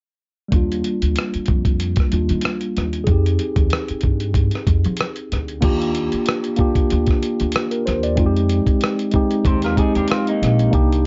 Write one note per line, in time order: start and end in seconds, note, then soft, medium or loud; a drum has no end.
0.48 2.06 G3 medium
0.48 2.08 A#3 medium
0.48 kick medium
0.48 closed hi-hat medium
0.53 0.80 D#2 medium
0.53 2.09 D4 medium
0.53 2.10 F4 medium
0.72 closed hi-hat soft
0.84 closed hi-hat medium
1.02 1.15 D2 medium
1.02 closed hi-hat soft
1.16 cross-stick medium
1.16 closed hi-hat medium
1.34 muted upright bass stroke soft
1.34 closed hi-hat soft
1.46 1.92 F2 medium
1.46 kick medium
1.46 closed hi-hat soft
1.65 kick medium
1.65 closed hi-hat soft
1.80 closed hi-hat medium
1.96 kick medium
1.96 closed hi-hat soft
2.00 cross-stick soft
2.10 2.28 D#2 medium
2.10 3.06 G3 soft
2.10 3.07 A#3 soft
2.10 3.08 D4 soft
2.10 3.08 F4 soft
2.10 closed hi-hat medium
2.29 2.42 D#3 medium
2.29 closed hi-hat soft
2.41 cross-stick medium
2.41 closed hi-hat medium
2.61 closed hi-hat soft
2.77 3.04 D#2 medium
2.77 cross-stick soft
2.77 closed hi-hat medium
2.93 closed hi-hat soft
3.04 3.36 F2 medium
3.04 5.58 C4 medium
3.04 5.57 G#4 medium
3.04 kick medium
3.04 closed hi-hat medium
3.09 5.59 D#4 medium
3.09 5.61 G4 medium
3.26 closed hi-hat soft
3.39 closed hi-hat medium
3.56 3.70 D#2 medium
3.56 kick medium
3.56 closed hi-hat soft
3.70 cross-stick loud
3.70 closed hi-hat medium
3.88 muted upright bass stroke soft
3.88 closed hi-hat soft
4.01 4.47 G2 medium
4.01 kick medium
4.01 closed hi-hat soft
4.20 closed hi-hat soft
4.34 kick medium
4.34 closed hi-hat medium
4.51 closed hi-hat soft
4.55 cross-stick soft
4.67 4.82 F2 medium
4.67 kick medium
4.67 closed hi-hat medium
4.85 4.98 F3 medium
4.85 closed hi-hat soft
4.97 cross-stick medium
4.97 closed hi-hat medium
5.16 closed hi-hat soft
5.32 5.60 D2 medium
5.32 cross-stick soft
5.32 closed hi-hat medium
5.48 closed hi-hat soft
5.61 6.06 D#2 medium
5.61 6.45 A#3 medium
5.61 6.46 D4 medium
5.61 6.47 F4 medium
5.61 6.47 G4 loud
5.61 kick loud
5.61 closed hi-hat medium
5.61 crash medium
5.82 closed hi-hat soft
5.95 closed hi-hat medium
6.12 muted upright bass stroke soft
6.12 closed hi-hat soft
6.26 cross-stick medium
6.26 closed hi-hat medium
6.44 closed hi-hat soft
6.56 7.13 A#3 medium
6.56 7.14 D4 medium
6.56 7.15 F4 medium
6.56 kick medium
6.56 closed hi-hat soft
6.61 7.15 G4 medium
6.75 kick medium
6.75 closed hi-hat soft
6.90 7.19 D2 medium
6.90 closed hi-hat medium
7.07 kick medium
7.07 closed hi-hat soft
7.11 cross-stick soft
7.23 closed hi-hat medium
7.40 7.53 D2 medium
7.40 closed hi-hat soft
7.52 cross-stick loud
7.52 closed hi-hat medium
7.71 7.85 A#4 medium
7.71 closed hi-hat soft
7.86 8.18 D#2 medium
7.86 8.02 C5 medium
7.86 cross-stick soft
7.86 closed hi-hat medium
8.03 8.34 D5 medium
8.03 closed hi-hat soft
8.16 8.61 F2 medium
8.16 9.00 G#3 medium
8.16 9.01 C4 medium
8.16 9.02 D#4 medium
8.16 8.26 F4 medium
8.16 kick loud
8.16 closed hi-hat medium
8.26 9.06 G4 loud
8.37 closed hi-hat soft
8.49 closed hi-hat medium
8.67 muted upright bass stroke soft
8.67 kick medium
8.67 closed hi-hat soft
8.81 cross-stick medium
8.81 closed hi-hat medium
8.99 closed hi-hat soft
9.11 9.68 G#3 medium
9.11 9.69 C4 medium
9.11 9.70 D#4 medium
9.11 kick medium
9.11 closed hi-hat soft
9.16 9.70 G4 medium
9.31 closed hi-hat soft
9.45 9.74 D#2 medium
9.45 9.63 G4 soft
9.45 9.63 C5 medium
9.45 kick medium
9.45 closed hi-hat medium
9.62 9.78 F4 medium
9.62 9.77 A#4 medium
9.62 closed hi-hat soft
9.66 cross-stick soft
9.75 10.60 G#3 medium
9.75 10.61 C4 medium
9.75 10.61 D#4 medium
9.75 9.95 D#4 medium
9.75 10.62 G4 medium
9.75 9.94 G#4 medium
9.75 kick medium
9.75 closed hi-hat medium
9.95 10.08 D#2 medium
9.95 10.09 D4 medium
9.95 10.09 G4 medium
9.95 closed hi-hat soft
10.08 10.27 C4 medium
10.08 10.26 F4 medium
10.08 cross-stick medium
10.08 closed hi-hat medium
10.27 10.72 A#3 medium
10.27 10.72 D#4 medium
10.27 closed hi-hat soft
10.42 10.70 A#1 medium
10.42 cross-stick soft
10.42 closed hi-hat medium
10.59 closed hi-hat soft
10.71 11.07 C2 medium
10.71 11.07 A#3 loud
10.71 11.07 D4 medium
10.71 11.07 D#4 medium
10.71 11.07 G4 loud
10.71 kick loud
10.71 closed hi-hat medium
10.92 closed hi-hat soft